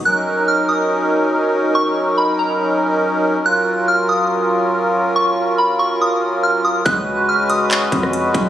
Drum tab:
HH |----------------|----------------|----------------|----------------|
CP |----------------|----------------|----------------|----------------|
SD |----------------|----------------|----------------|----------------|
BD |----------------|----------------|----------------|----------------|

HH |x-----x-x-x-x-x-|
CP |--------x-------|
SD |-----------r----|
BD |o---------o---o-|